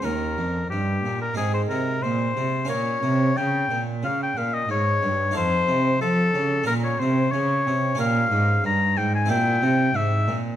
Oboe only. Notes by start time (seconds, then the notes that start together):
0.05 A#4
0.70 G4
1.22 A#4
1.37 G#4
1.54 C5
1.69 A#4
2.03 C5
2.69 C#5
3.37 G5
4.04 F5
4.23 G5
4.38 F5
4.53 D#5
4.71 C#5
5.37 C5
6.01 A4
6.67 A#4
6.84 C#5
7.00 C5
7.32 C#5
8.00 F5
8.66 A#5
8.97 G5
9.15 G#5
9.30 G5
9.96 E5